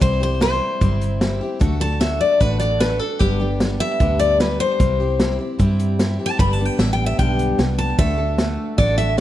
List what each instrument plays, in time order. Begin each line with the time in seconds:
0.00 fingered electric bass C2, steel-string acoustic guitar C3 G3 C4 E4 G4 C5, kick, closed hi-hat
0.20 steel-string acoustic guitar C4 E4 G4 C5
0.40 steel-string acoustic guitar G3 C4 E4 G4 C5, snare, closed hi-hat
0.81 fingered electric bass G1, steel-string acoustic guitar C3 G3 C4 E4 G4, kick, closed hi-hat
1.01 closed hi-hat
1.21 steel-string acoustic guitar G3 C4 E4 G4, snare, closed hi-hat
1.41 steel-string acoustic guitar C4 E4 G4
1.59 fingered electric bass D2, steel-string acoustic guitar D3 A3 D4 F#4 A4, kick, closed hi-hat
1.80 steel-string acoustic guitar D4 F#4 A4 A5
2.00 steel-string acoustic guitar A3 D4 F#4 A4 E5, snare, closed hi-hat
2.21 steel-string acoustic guitar D5
2.40 fingered electric bass A1, steel-string acoustic guitar D3 A3 D4 F#4 A4 B4, kick, closed hi-hat
2.60 steel-string acoustic guitar D5, closed hi-hat
2.80 steel-string acoustic guitar A3 D4 F#4 A4 B4, snare, closed hi-hat
2.99 steel-string acoustic guitar D4 F#4 A4
3.19 fingered electric bass G1, steel-string acoustic guitar G2 D3 G3 B3 D4 G4, kick, closed hi-hat
3.40 steel-string acoustic guitar G3 B3 D4 G4
3.60 steel-string acoustic guitar G3 B3 D4 G4, snare, closed hi-hat
3.80 steel-string acoustic guitar E5
4.00 fingered electric bass D2, steel-string acoustic guitar G2 D3 G3 B3 D4 G4, kick, closed hi-hat
4.20 steel-string acoustic guitar D5, closed hi-hat
4.40 steel-string acoustic guitar G3 B3 D4 G4 B4, snare, closed hi-hat
4.60 steel-string acoustic guitar C5
4.79 fingered electric bass C2, steel-string acoustic guitar C3 G3 C4 E4 G4, kick, closed hi-hat
5.00 steel-string acoustic guitar C4 E4 G4
5.19 steel-string acoustic guitar G3 C4 E4 G4, snare, closed hi-hat
5.39 steel-string acoustic guitar C4 E4 G4
5.59 fingered electric bass G2, steel-string acoustic guitar C3 G3 C4 E4 G4, kick, closed hi-hat
5.79 closed hi-hat
5.99 steel-string acoustic guitar G3 C4 E4 G4, snare, closed hi-hat
6.19 steel-string acoustic guitar C4 E4 G4
6.26 steel-string acoustic guitar A5
6.38 fingered electric bass G1, steel-string acoustic guitar G2 D3 G3 B3 D4 G4 B5, kick, closed hi-hat
6.53 steel-string acoustic guitar A5
6.59 steel-string acoustic guitar G3 B3 D4 G4
6.65 steel-string acoustic guitar G5
6.78 fingered electric bass A1, steel-string acoustic guitar G3 B3 D4 G4 E5, snare, closed hi-hat
6.93 steel-string acoustic guitar G5
7.06 steel-string acoustic guitar E5
7.19 fingered electric bass B1, steel-string acoustic guitar G2 D3 G3 B3 D4 G4 G5, kick, closed hi-hat
7.39 closed hi-hat
7.58 fingered electric bass C2, steel-string acoustic guitar G3 B3 D4 G4, snare, closed hi-hat
7.78 steel-string acoustic guitar A5
7.98 fingered electric bass D2, steel-string acoustic guitar D3 A3 D4 F#4 A4 E5, kick, closed hi-hat
8.18 steel-string acoustic guitar D4 F#4 A4
8.38 steel-string acoustic guitar A3 D4 F#4 A4, snare, closed hi-hat
8.78 fingered electric bass A1, steel-string acoustic guitar D3 A3 D4 F#4 A4 D5, kick, closed hi-hat
8.98 steel-string acoustic guitar E5, closed hi-hat
9.17 steel-string acoustic guitar A3